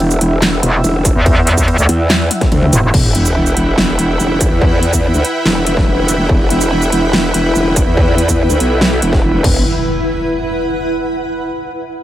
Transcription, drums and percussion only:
0.00 ride
0.11 shaker
0.21 closed hi-hat
0.42 snare, clap, ride
0.63 closed hi-hat
0.84 ride, shaker
1.05 kick, closed hi-hat, shaker
1.26 kick, ride
1.47 closed hi-hat
1.57 kick, shaker
1.68 ride
1.78 shaker
1.89 closed hi-hat
2.10 snare, clap, ride
2.31 closed hi-hat, high tom
2.41 kick, snare, closed hi-hat
2.52 mid tom, ride
2.62 mid tom
2.73 closed hi-hat, mid tom, shaker
2.83 mid tom
2.94 kick, crash
3.15 closed hi-hat
3.25 shaker
3.46 shaker
3.57 closed hi-hat
3.78 snare
3.99 closed hi-hat
4.20 shaker
4.41 kick, closed hi-hat, shaker
4.62 kick
4.83 closed hi-hat
4.93 kick, shaker
5.14 shaker
5.25 closed hi-hat
5.46 snare
5.67 closed hi-hat
5.77 kick, snare
6.08 closed hi-hat, shaker
6.29 kick
6.50 closed hi-hat
6.61 shaker
6.82 shaker
6.92 closed hi-hat
7.13 snare
7.34 closed hi-hat
7.55 shaker
7.76 kick, closed hi-hat, shaker
7.97 kick
8.18 closed hi-hat
8.29 kick, shaker
8.50 shaker
8.60 closed hi-hat
8.81 snare
9.02 closed hi-hat
9.13 kick, snare
9.44 kick, crash

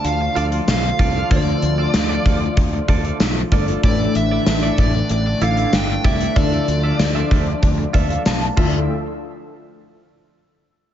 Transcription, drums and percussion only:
0.05 closed hi-hat
0.36 closed hi-hat
0.52 closed hi-hat
0.68 snare, closed hi-hat, tambourine
0.99 kick, closed hi-hat
1.31 kick, closed hi-hat
1.62 closed hi-hat
1.94 snare, closed hi-hat, tambourine
2.26 kick, closed hi-hat
2.57 kick, closed hi-hat
2.88 kick, closed hi-hat
3.05 closed hi-hat
3.20 snare, closed hi-hat, tambourine
3.52 kick, closed hi-hat
3.68 closed hi-hat
3.83 kick, closed hi-hat
4.15 closed hi-hat
4.46 snare, closed hi-hat, tambourine
4.78 kick, closed hi-hat
5.09 closed hi-hat
5.42 closed hi-hat
5.57 closed hi-hat
5.73 snare, closed hi-hat, tambourine
6.05 kick, closed hi-hat
6.21 closed hi-hat
6.36 kick, closed hi-hat
6.68 closed hi-hat
6.99 snare, closed hi-hat, tambourine
7.31 kick, closed hi-hat
7.63 kick, closed hi-hat
7.94 kick, closed hi-hat
8.10 closed hi-hat
8.25 snare, closed hi-hat, tambourine
8.57 kick, crash

